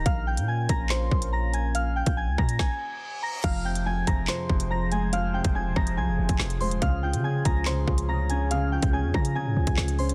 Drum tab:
CC |----------------|----------------|x---------------|----------------|
HH |x--x--x-x--x--x-|x--x---x--------|x--x--x-x--x--x-|x--x---x---x-xox|
CP |--------x-------|----------------|--------x-------|------------x---|
SD |--------o-------|--------o-------|--------o-------|------r-----o---|
BD |o-----o---o-----|---o--o-o-------|o-----o---o-----|---o--o----o----|

CC |----------------|----------------|
HH |x--x--x-x--x--x-|x--x---x---x-xox|
CP |--------x-------|------------x---|
SD |--------o-------|------r-----o---|
BD |o-----o---o-----|---o--o----o----|